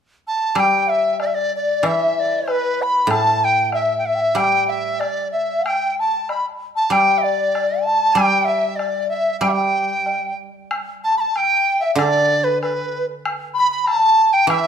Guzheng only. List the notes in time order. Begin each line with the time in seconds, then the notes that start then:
0.55 G3
1.83 E3
3.07 A2
4.35 G3
6.90 G3
8.15 G3
9.41 G3
11.95 D3
14.47 E3